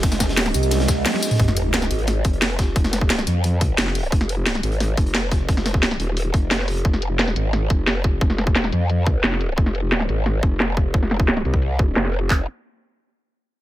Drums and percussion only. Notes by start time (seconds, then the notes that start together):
0.03 kick, snare, closed hi-hat, ride
0.12 snare, closed hi-hat, tambourine
0.20 kick, snare, closed hi-hat, tambourine
0.29 snare, closed hi-hat
0.37 snare, closed hi-hat, ride
0.46 snare
0.54 closed hi-hat, tambourine
0.63 tambourine
0.71 snare, closed hi-hat, ride
0.80 snare, closed hi-hat
0.88 kick, snare, closed hi-hat, tambourine
1.06 snare, closed hi-hat, high tom, ride
1.08 snare, closed hi-hat
1.14 snare, closed hi-hat, high tom
1.18 snare, closed hi-hat
1.23 snare, closed hi-hat, tambourine
1.26 snare, closed hi-hat
1.30 snare, closed hi-hat, mid tom, tambourine
1.35 snare, closed hi-hat
1.40 kick, closed hi-hat
1.48 snare
1.56 closed hi-hat
1.73 snare, closed hi-hat
1.82 snare
1.91 closed hi-hat
1.98 closed hi-hat
2.07 snare, closed hi-hat
2.24 kick, closed hi-hat
2.33 closed hi-hat
2.41 snare, closed hi-hat
2.59 kick, snare, closed hi-hat
2.76 kick, closed hi-hat
2.84 snare
2.92 snare, closed hi-hat
3.01 kick
3.10 snare, closed hi-hat
3.19 snare
3.27 closed hi-hat
3.44 closed hi-hat
3.61 kick, closed hi-hat
3.78 snare, closed hi-hat
3.87 snare
3.95 closed hi-hat, open hi-hat
4.04 closed hi-hat
4.12 kick, closed hi-hat
4.21 snare
4.29 closed hi-hat
4.46 snare, closed hi-hat
4.55 snare
4.63 closed hi-hat
4.72 closed hi-hat
4.80 snare, closed hi-hat
4.97 kick, closed hi-hat
5.06 closed hi-hat
5.14 snare, closed hi-hat
5.31 kick, snare, closed hi-hat
5.49 kick, closed hi-hat
5.56 snare
5.65 snare, closed hi-hat
5.74 kick
5.82 snare, closed hi-hat
5.91 snare
6.00 closed hi-hat
6.17 closed hi-hat
6.34 kick, closed hi-hat
6.51 snare, closed hi-hat
6.59 snare
6.67 closed hi-hat, open hi-hat
6.76 closed hi-hat
6.85 kick, closed hi-hat
6.93 snare
7.02 closed hi-hat
7.19 snare, closed hi-hat
7.28 snare
7.36 closed hi-hat
7.53 snare, closed hi-hat
7.70 kick, closed hi-hat
7.87 snare, closed hi-hat
8.04 kick, closed hi-hat
8.21 kick, closed hi-hat
8.30 snare
8.38 snare, closed hi-hat
8.47 kick
8.55 snare, closed hi-hat
8.64 snare
8.72 closed hi-hat
8.90 closed hi-hat
9.07 kick, closed hi-hat
9.24 snare, closed hi-hat
9.32 snare
9.41 closed hi-hat
9.58 kick, closed hi-hat
9.66 snare
9.75 closed hi-hat
9.92 snare, closed hi-hat
10.00 snare
10.09 closed hi-hat
10.26 snare, closed hi-hat
10.43 kick, closed hi-hat
10.60 snare, closed hi-hat
10.77 kick, closed hi-hat
10.94 kick, closed hi-hat
11.03 snare
11.11 snare, closed hi-hat
11.20 kick
11.28 snare, closed hi-hat
11.37 snare
11.45 closed hi-hat
11.54 kick
11.62 closed hi-hat
11.79 kick
11.96 snare, closed hi-hat
12.05 snare
12.13 closed hi-hat
12.30 kick, clap